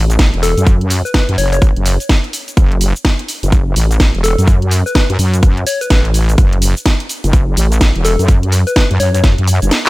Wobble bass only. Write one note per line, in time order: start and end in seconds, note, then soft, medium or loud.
0.00 0.31 A1 loud
0.34 0.55 E1 loud
0.57 1.03 F#2 loud
1.29 1.37 F#2 loud
1.38 1.60 F#1 loud
1.62 1.74 G#1 loud
1.76 1.98 F#1 loud
2.57 2.93 F#1 loud
3.43 3.75 F#1 medium
3.76 4.12 A1 loud
4.15 4.36 E1 loud
4.38 4.84 F#2 loud
5.10 5.17 F#2 loud
5.19 5.65 F#2 loud
5.90 6.37 A1 loud
6.38 6.74 F#1 loud
7.24 7.56 F#1 medium
7.57 7.93 A1 loud
7.95 8.17 E1 loud
8.19 8.65 F#2 loud
8.91 8.98 F#2 loud
9.00 9.36 F#2 loud
9.38 9.60 F#2 loud
9.62 9.71 F#1 loud